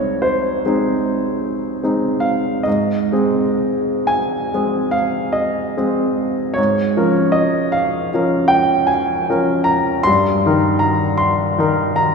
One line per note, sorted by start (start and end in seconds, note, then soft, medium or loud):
0.00 2.69 C2 soft
0.00 0.61 G#3 soft
0.00 0.61 C4 soft
0.00 0.62 D#4 soft
0.00 0.24 C#5 medium
0.00 2.63 D#5 medium
0.22 2.23 C5 medium
0.66 1.80 G#3 soft
0.66 1.81 C4 soft
0.66 1.81 D#4 soft
1.84 2.62 G#3 soft
1.84 2.62 C4 soft
1.84 2.62 D#4 soft
2.20 2.64 F5 medium
2.63 3.11 G#2 soft
2.63 4.10 D#5 medium
3.12 4.50 G#3 soft
3.12 4.51 C4 soft
3.12 4.51 G#4 soft
4.07 4.93 G#5 medium
4.54 5.73 G#3 soft
4.54 5.73 C4 soft
4.54 5.73 G#4 soft
4.91 5.34 F5 medium
5.33 6.56 D#5 medium
5.77 6.54 G#3 soft
5.77 6.54 C4 soft
5.77 6.54 G#4 soft
6.54 6.96 G#2 medium
6.54 7.34 C#5 medium
6.97 8.10 F3 soft
6.97 8.10 C#4 soft
6.97 8.10 A#4 soft
7.32 7.73 D#5 medium
7.72 8.51 F5 medium
8.14 9.26 F3 soft
8.14 9.26 C#4 soft
8.14 9.27 A#4 soft
8.48 8.89 G5 medium
8.87 9.66 G#5 medium
9.30 10.03 F3 soft
9.30 10.03 C#4 soft
9.30 10.03 A#4 soft
9.64 10.05 A#5 medium
10.03 10.44 G2 medium
10.03 10.82 C6 medium
10.46 11.56 D#3 soft
10.46 11.56 D#4 soft
10.46 11.57 A#4 soft
10.79 11.19 A#5 medium
11.18 11.98 C6 medium
11.58 12.15 D#3 soft
11.58 12.15 D#4 soft
11.58 12.15 A#4 medium
11.96 12.15 A#5 medium